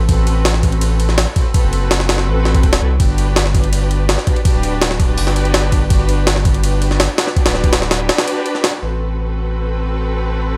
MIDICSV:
0, 0, Header, 1, 4, 480
1, 0, Start_track
1, 0, Tempo, 363636
1, 120, Time_signature, 4, 2, 24, 8
1, 13955, End_track
2, 0, Start_track
2, 0, Title_t, "String section"
2, 0, Program_c, 0, 48
2, 115, Note_on_c, 0, 60, 90
2, 115, Note_on_c, 0, 66, 79
2, 117, Note_on_c, 0, 69, 80
2, 118, Note_on_c, 0, 71, 97
2, 809, Note_off_c, 0, 60, 0
2, 809, Note_off_c, 0, 66, 0
2, 810, Note_off_c, 0, 69, 0
2, 811, Note_off_c, 0, 71, 0
2, 833, Note_on_c, 0, 69, 72
2, 834, Note_on_c, 0, 71, 86
2, 835, Note_on_c, 0, 66, 71
2, 837, Note_on_c, 0, 60, 80
2, 1768, Note_off_c, 0, 69, 0
2, 1769, Note_off_c, 0, 66, 0
2, 1769, Note_off_c, 0, 71, 0
2, 1770, Note_off_c, 0, 60, 0
2, 1794, Note_on_c, 0, 60, 84
2, 1794, Note_on_c, 0, 66, 78
2, 1796, Note_on_c, 0, 71, 94
2, 1797, Note_on_c, 0, 69, 76
2, 2008, Note_off_c, 0, 60, 0
2, 2009, Note_off_c, 0, 66, 0
2, 2009, Note_off_c, 0, 71, 0
2, 2010, Note_off_c, 0, 69, 0
2, 2030, Note_on_c, 0, 60, 91
2, 2032, Note_on_c, 0, 69, 81
2, 2033, Note_on_c, 0, 66, 84
2, 2033, Note_on_c, 0, 71, 99
2, 2726, Note_off_c, 0, 60, 0
2, 2728, Note_off_c, 0, 66, 0
2, 2728, Note_off_c, 0, 69, 0
2, 2728, Note_off_c, 0, 71, 0
2, 2753, Note_on_c, 0, 69, 94
2, 2754, Note_on_c, 0, 60, 100
2, 2755, Note_on_c, 0, 71, 109
2, 2756, Note_on_c, 0, 66, 94
2, 3693, Note_off_c, 0, 60, 0
2, 3693, Note_off_c, 0, 69, 0
2, 3693, Note_off_c, 0, 71, 0
2, 3694, Note_off_c, 0, 66, 0
2, 3722, Note_on_c, 0, 60, 73
2, 3722, Note_on_c, 0, 66, 68
2, 3723, Note_on_c, 0, 69, 69
2, 3723, Note_on_c, 0, 71, 82
2, 3932, Note_off_c, 0, 60, 0
2, 3933, Note_off_c, 0, 66, 0
2, 3933, Note_off_c, 0, 69, 0
2, 3933, Note_off_c, 0, 71, 0
2, 3958, Note_on_c, 0, 67, 80
2, 3958, Note_on_c, 0, 71, 96
2, 3960, Note_on_c, 0, 66, 80
2, 3961, Note_on_c, 0, 62, 86
2, 4650, Note_off_c, 0, 67, 0
2, 4650, Note_off_c, 0, 71, 0
2, 4651, Note_off_c, 0, 66, 0
2, 4652, Note_off_c, 0, 62, 0
2, 4680, Note_on_c, 0, 62, 80
2, 4681, Note_on_c, 0, 67, 71
2, 4683, Note_on_c, 0, 71, 87
2, 4684, Note_on_c, 0, 66, 72
2, 5612, Note_off_c, 0, 62, 0
2, 5612, Note_off_c, 0, 67, 0
2, 5613, Note_off_c, 0, 71, 0
2, 5614, Note_off_c, 0, 66, 0
2, 5637, Note_on_c, 0, 66, 78
2, 5639, Note_on_c, 0, 62, 86
2, 5639, Note_on_c, 0, 71, 94
2, 5640, Note_on_c, 0, 67, 76
2, 5850, Note_off_c, 0, 66, 0
2, 5851, Note_off_c, 0, 62, 0
2, 5851, Note_off_c, 0, 71, 0
2, 5852, Note_off_c, 0, 67, 0
2, 5879, Note_on_c, 0, 67, 83
2, 5880, Note_on_c, 0, 62, 92
2, 5880, Note_on_c, 0, 71, 100
2, 5881, Note_on_c, 0, 66, 83
2, 6571, Note_off_c, 0, 67, 0
2, 6571, Note_off_c, 0, 71, 0
2, 6572, Note_off_c, 0, 62, 0
2, 6572, Note_off_c, 0, 66, 0
2, 6602, Note_on_c, 0, 62, 104
2, 6605, Note_on_c, 0, 71, 111
2, 6606, Note_on_c, 0, 66, 93
2, 6606, Note_on_c, 0, 67, 96
2, 7773, Note_off_c, 0, 62, 0
2, 7774, Note_off_c, 0, 66, 0
2, 7774, Note_off_c, 0, 67, 0
2, 7774, Note_off_c, 0, 71, 0
2, 7791, Note_on_c, 0, 67, 78
2, 7793, Note_on_c, 0, 62, 89
2, 7793, Note_on_c, 0, 71, 98
2, 7794, Note_on_c, 0, 66, 82
2, 8487, Note_off_c, 0, 67, 0
2, 8488, Note_off_c, 0, 62, 0
2, 8488, Note_off_c, 0, 71, 0
2, 8489, Note_off_c, 0, 66, 0
2, 8518, Note_on_c, 0, 62, 77
2, 8518, Note_on_c, 0, 66, 73
2, 8519, Note_on_c, 0, 71, 87
2, 8522, Note_on_c, 0, 67, 73
2, 9451, Note_off_c, 0, 62, 0
2, 9451, Note_off_c, 0, 66, 0
2, 9451, Note_off_c, 0, 71, 0
2, 9453, Note_off_c, 0, 67, 0
2, 9478, Note_on_c, 0, 67, 79
2, 9479, Note_on_c, 0, 71, 95
2, 9480, Note_on_c, 0, 62, 87
2, 9480, Note_on_c, 0, 66, 80
2, 9691, Note_off_c, 0, 67, 0
2, 9691, Note_off_c, 0, 71, 0
2, 9692, Note_off_c, 0, 62, 0
2, 9692, Note_off_c, 0, 66, 0
2, 9716, Note_on_c, 0, 66, 85
2, 9716, Note_on_c, 0, 67, 84
2, 9718, Note_on_c, 0, 71, 102
2, 9719, Note_on_c, 0, 62, 90
2, 10409, Note_off_c, 0, 66, 0
2, 10409, Note_off_c, 0, 67, 0
2, 10411, Note_off_c, 0, 62, 0
2, 10411, Note_off_c, 0, 71, 0
2, 10437, Note_on_c, 0, 62, 105
2, 10437, Note_on_c, 0, 71, 114
2, 10438, Note_on_c, 0, 66, 94
2, 10438, Note_on_c, 0, 67, 93
2, 11610, Note_off_c, 0, 62, 0
2, 11610, Note_off_c, 0, 66, 0
2, 11610, Note_off_c, 0, 71, 0
2, 11611, Note_off_c, 0, 67, 0
2, 11646, Note_on_c, 0, 60, 81
2, 11647, Note_on_c, 0, 69, 73
2, 11648, Note_on_c, 0, 66, 74
2, 11648, Note_on_c, 0, 71, 90
2, 13955, Note_off_c, 0, 60, 0
2, 13955, Note_off_c, 0, 66, 0
2, 13955, Note_off_c, 0, 69, 0
2, 13955, Note_off_c, 0, 71, 0
2, 13955, End_track
3, 0, Start_track
3, 0, Title_t, "Sub bass"
3, 0, Program_c, 1, 38
3, 115, Note_on_c, 1, 33, 97
3, 1660, Note_off_c, 1, 33, 0
3, 2160, Note_on_c, 1, 30, 90
3, 2998, Note_on_c, 1, 33, 97
3, 3018, Note_off_c, 1, 30, 0
3, 3470, Note_off_c, 1, 33, 0
3, 3478, Note_on_c, 1, 28, 95
3, 3695, Note_off_c, 1, 28, 0
3, 3720, Note_on_c, 1, 36, 79
3, 3937, Note_off_c, 1, 36, 0
3, 3959, Note_on_c, 1, 31, 100
3, 5502, Note_off_c, 1, 31, 0
3, 6000, Note_on_c, 1, 26, 90
3, 6836, Note_on_c, 1, 31, 97
3, 6855, Note_off_c, 1, 26, 0
3, 7539, Note_off_c, 1, 31, 0
3, 7556, Note_on_c, 1, 31, 86
3, 7774, Note_off_c, 1, 31, 0
3, 7795, Note_on_c, 1, 31, 100
3, 9340, Note_off_c, 1, 31, 0
3, 9845, Note_on_c, 1, 26, 91
3, 10682, Note_off_c, 1, 26, 0
3, 11645, Note_on_c, 1, 33, 87
3, 13955, Note_off_c, 1, 33, 0
3, 13955, End_track
4, 0, Start_track
4, 0, Title_t, "Drums"
4, 115, Note_on_c, 9, 51, 84
4, 116, Note_on_c, 9, 36, 104
4, 247, Note_off_c, 9, 51, 0
4, 248, Note_off_c, 9, 36, 0
4, 354, Note_on_c, 9, 51, 66
4, 486, Note_off_c, 9, 51, 0
4, 595, Note_on_c, 9, 38, 114
4, 595, Note_on_c, 9, 51, 87
4, 716, Note_off_c, 9, 38, 0
4, 716, Note_on_c, 9, 38, 43
4, 727, Note_off_c, 9, 51, 0
4, 833, Note_on_c, 9, 51, 66
4, 835, Note_on_c, 9, 36, 93
4, 848, Note_off_c, 9, 38, 0
4, 955, Note_off_c, 9, 51, 0
4, 955, Note_on_c, 9, 51, 43
4, 967, Note_off_c, 9, 36, 0
4, 1074, Note_off_c, 9, 51, 0
4, 1074, Note_on_c, 9, 51, 85
4, 1206, Note_off_c, 9, 51, 0
4, 1315, Note_on_c, 9, 51, 65
4, 1436, Note_on_c, 9, 38, 38
4, 1447, Note_off_c, 9, 51, 0
4, 1554, Note_off_c, 9, 38, 0
4, 1554, Note_on_c, 9, 38, 109
4, 1554, Note_on_c, 9, 51, 86
4, 1686, Note_off_c, 9, 38, 0
4, 1686, Note_off_c, 9, 51, 0
4, 1795, Note_on_c, 9, 51, 69
4, 1797, Note_on_c, 9, 36, 95
4, 1927, Note_off_c, 9, 51, 0
4, 1929, Note_off_c, 9, 36, 0
4, 2037, Note_on_c, 9, 51, 84
4, 2038, Note_on_c, 9, 36, 105
4, 2169, Note_off_c, 9, 51, 0
4, 2170, Note_off_c, 9, 36, 0
4, 2280, Note_on_c, 9, 51, 66
4, 2412, Note_off_c, 9, 51, 0
4, 2519, Note_on_c, 9, 38, 114
4, 2519, Note_on_c, 9, 51, 84
4, 2641, Note_off_c, 9, 38, 0
4, 2641, Note_on_c, 9, 38, 55
4, 2651, Note_off_c, 9, 51, 0
4, 2759, Note_off_c, 9, 38, 0
4, 2759, Note_on_c, 9, 38, 102
4, 2759, Note_on_c, 9, 51, 77
4, 2879, Note_off_c, 9, 38, 0
4, 2879, Note_on_c, 9, 38, 50
4, 2891, Note_off_c, 9, 51, 0
4, 3011, Note_off_c, 9, 38, 0
4, 3239, Note_on_c, 9, 38, 51
4, 3360, Note_on_c, 9, 36, 82
4, 3360, Note_on_c, 9, 51, 60
4, 3371, Note_off_c, 9, 38, 0
4, 3477, Note_off_c, 9, 51, 0
4, 3477, Note_on_c, 9, 51, 60
4, 3478, Note_off_c, 9, 36, 0
4, 3478, Note_on_c, 9, 36, 83
4, 3600, Note_off_c, 9, 51, 0
4, 3600, Note_on_c, 9, 38, 101
4, 3600, Note_on_c, 9, 51, 77
4, 3610, Note_off_c, 9, 36, 0
4, 3732, Note_off_c, 9, 38, 0
4, 3732, Note_off_c, 9, 51, 0
4, 3958, Note_on_c, 9, 51, 84
4, 3959, Note_on_c, 9, 36, 108
4, 4090, Note_off_c, 9, 51, 0
4, 4091, Note_off_c, 9, 36, 0
4, 4199, Note_on_c, 9, 51, 65
4, 4331, Note_off_c, 9, 51, 0
4, 4439, Note_on_c, 9, 38, 114
4, 4439, Note_on_c, 9, 51, 84
4, 4564, Note_off_c, 9, 38, 0
4, 4564, Note_on_c, 9, 38, 44
4, 4571, Note_off_c, 9, 51, 0
4, 4679, Note_on_c, 9, 36, 92
4, 4680, Note_on_c, 9, 51, 66
4, 4696, Note_off_c, 9, 38, 0
4, 4800, Note_off_c, 9, 51, 0
4, 4800, Note_on_c, 9, 51, 43
4, 4811, Note_off_c, 9, 36, 0
4, 4919, Note_off_c, 9, 51, 0
4, 4919, Note_on_c, 9, 51, 86
4, 5051, Note_off_c, 9, 51, 0
4, 5159, Note_on_c, 9, 51, 59
4, 5291, Note_off_c, 9, 51, 0
4, 5398, Note_on_c, 9, 38, 100
4, 5398, Note_on_c, 9, 51, 80
4, 5519, Note_off_c, 9, 38, 0
4, 5519, Note_on_c, 9, 38, 39
4, 5530, Note_off_c, 9, 51, 0
4, 5637, Note_on_c, 9, 51, 62
4, 5638, Note_on_c, 9, 36, 86
4, 5651, Note_off_c, 9, 38, 0
4, 5760, Note_off_c, 9, 51, 0
4, 5760, Note_on_c, 9, 51, 38
4, 5770, Note_off_c, 9, 36, 0
4, 5876, Note_off_c, 9, 51, 0
4, 5876, Note_on_c, 9, 51, 88
4, 5877, Note_on_c, 9, 36, 106
4, 6008, Note_off_c, 9, 51, 0
4, 6009, Note_off_c, 9, 36, 0
4, 6116, Note_on_c, 9, 51, 67
4, 6248, Note_off_c, 9, 51, 0
4, 6356, Note_on_c, 9, 38, 113
4, 6356, Note_on_c, 9, 51, 87
4, 6479, Note_off_c, 9, 38, 0
4, 6479, Note_on_c, 9, 38, 54
4, 6488, Note_off_c, 9, 51, 0
4, 6595, Note_on_c, 9, 51, 68
4, 6596, Note_on_c, 9, 36, 92
4, 6611, Note_off_c, 9, 38, 0
4, 6727, Note_off_c, 9, 51, 0
4, 6728, Note_off_c, 9, 36, 0
4, 6832, Note_on_c, 9, 46, 79
4, 6956, Note_on_c, 9, 38, 51
4, 6964, Note_off_c, 9, 46, 0
4, 7076, Note_on_c, 9, 51, 68
4, 7088, Note_off_c, 9, 38, 0
4, 7197, Note_off_c, 9, 51, 0
4, 7197, Note_on_c, 9, 51, 44
4, 7314, Note_off_c, 9, 51, 0
4, 7314, Note_on_c, 9, 38, 113
4, 7314, Note_on_c, 9, 51, 88
4, 7446, Note_off_c, 9, 38, 0
4, 7446, Note_off_c, 9, 51, 0
4, 7553, Note_on_c, 9, 51, 70
4, 7555, Note_on_c, 9, 36, 97
4, 7685, Note_off_c, 9, 51, 0
4, 7687, Note_off_c, 9, 36, 0
4, 7793, Note_on_c, 9, 51, 87
4, 7795, Note_on_c, 9, 36, 106
4, 7925, Note_off_c, 9, 51, 0
4, 7927, Note_off_c, 9, 36, 0
4, 8035, Note_on_c, 9, 51, 65
4, 8167, Note_off_c, 9, 51, 0
4, 8275, Note_on_c, 9, 38, 115
4, 8275, Note_on_c, 9, 51, 87
4, 8398, Note_off_c, 9, 38, 0
4, 8398, Note_on_c, 9, 38, 44
4, 8407, Note_off_c, 9, 51, 0
4, 8516, Note_on_c, 9, 51, 65
4, 8517, Note_on_c, 9, 36, 94
4, 8530, Note_off_c, 9, 38, 0
4, 8639, Note_off_c, 9, 51, 0
4, 8639, Note_on_c, 9, 51, 43
4, 8649, Note_off_c, 9, 36, 0
4, 8758, Note_off_c, 9, 51, 0
4, 8758, Note_on_c, 9, 51, 87
4, 8890, Note_off_c, 9, 51, 0
4, 8998, Note_on_c, 9, 51, 67
4, 9122, Note_on_c, 9, 38, 38
4, 9130, Note_off_c, 9, 51, 0
4, 9238, Note_off_c, 9, 38, 0
4, 9238, Note_on_c, 9, 38, 115
4, 9238, Note_on_c, 9, 51, 87
4, 9370, Note_off_c, 9, 38, 0
4, 9370, Note_off_c, 9, 51, 0
4, 9480, Note_on_c, 9, 38, 106
4, 9480, Note_on_c, 9, 51, 81
4, 9602, Note_off_c, 9, 38, 0
4, 9602, Note_on_c, 9, 38, 40
4, 9612, Note_off_c, 9, 51, 0
4, 9721, Note_on_c, 9, 36, 84
4, 9722, Note_on_c, 9, 51, 60
4, 9734, Note_off_c, 9, 38, 0
4, 9843, Note_off_c, 9, 51, 0
4, 9843, Note_on_c, 9, 38, 102
4, 9843, Note_on_c, 9, 51, 80
4, 9853, Note_off_c, 9, 36, 0
4, 9961, Note_off_c, 9, 38, 0
4, 9961, Note_on_c, 9, 38, 41
4, 9975, Note_off_c, 9, 51, 0
4, 10082, Note_on_c, 9, 36, 83
4, 10082, Note_on_c, 9, 51, 60
4, 10093, Note_off_c, 9, 38, 0
4, 10200, Note_off_c, 9, 51, 0
4, 10200, Note_on_c, 9, 38, 116
4, 10200, Note_on_c, 9, 51, 90
4, 10214, Note_off_c, 9, 36, 0
4, 10324, Note_off_c, 9, 38, 0
4, 10324, Note_on_c, 9, 38, 57
4, 10332, Note_off_c, 9, 51, 0
4, 10441, Note_off_c, 9, 38, 0
4, 10441, Note_on_c, 9, 38, 104
4, 10441, Note_on_c, 9, 51, 79
4, 10573, Note_off_c, 9, 38, 0
4, 10573, Note_off_c, 9, 51, 0
4, 10681, Note_on_c, 9, 38, 105
4, 10681, Note_on_c, 9, 51, 79
4, 10803, Note_off_c, 9, 38, 0
4, 10803, Note_off_c, 9, 51, 0
4, 10803, Note_on_c, 9, 38, 104
4, 10803, Note_on_c, 9, 51, 79
4, 10924, Note_off_c, 9, 51, 0
4, 10924, Note_on_c, 9, 51, 79
4, 10935, Note_off_c, 9, 38, 0
4, 11056, Note_off_c, 9, 51, 0
4, 11163, Note_on_c, 9, 51, 62
4, 11286, Note_on_c, 9, 38, 34
4, 11295, Note_off_c, 9, 51, 0
4, 11403, Note_off_c, 9, 38, 0
4, 11403, Note_on_c, 9, 38, 108
4, 11403, Note_on_c, 9, 51, 82
4, 11535, Note_off_c, 9, 38, 0
4, 11535, Note_off_c, 9, 51, 0
4, 13955, End_track
0, 0, End_of_file